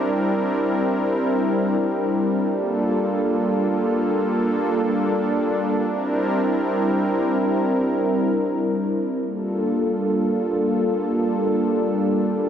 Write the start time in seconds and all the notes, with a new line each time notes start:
Already playing: G3 C4 D4 E4 A#4
2.50 A#3 D4 F4 A4
5.86 G3 C4 E4 A#4
9.22 G3 A#3 D4 F4 A4